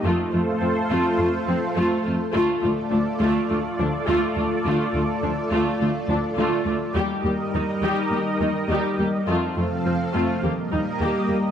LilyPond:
<<
  \new Staff \with { instrumentName = "Analog synth pad" } { \time 4/4 \key d \phrygian \tempo 4 = 104 <a f' a' c''>1 | <a f' a' d''>1~ | <a f' a' d''>1 | <g ees' bes' ees''>1 |
<f c' a' f''>2 <g bes bes' ees''>2 | }
  \new Staff \with { instrumentName = "Viola section" } { \time 4/4 \key d \phrygian <a f'>8 <a f'>8 <f c'>8 <a f'>8 <a f'>8 <f c'>8 <a f'>8 <a f'>8 | <a f'>8 <a f'>8 <f d'>8 <a f'>8 <a f'>8 <f d'>8 <a f'>8 <a f'>8 | <a f'>8 <a f'>8 <f d'>8 <a f'>8 <a f'>8 <f d'>8 <a f'>8 <a f'>8 | <g g'>8 <g g'>8 <ees ees'>8 <g g'>8 <g g'>8 <ees ees'>8 <g g'>8 <g g'>8 |
<a f'>8 <a f'>8 <f c'>8 <a f'>8 <bes g'>8 <g ees'>8 <bes g'>8 <bes g'>8 | }
  \new Staff \with { instrumentName = "Cello section" } { \clef bass \time 4/4 \key d \phrygian f,8 f,8 f,8 f,8 f,8 f,8 f,8 f,8 | d,8 d,8 d,8 d,8 d,8 d,8 d,8 d,8 | d,8 d,8 d,8 d,8 d,8 d,8 d,8 d,8 | ees,8 ees,8 ees,8 ees,8 ees,8 ees,8 ees,8 ees,8 |
f,8 f,8 f,8 f,8 ees,8 ees,8 ees,8 ees,8 | }
>>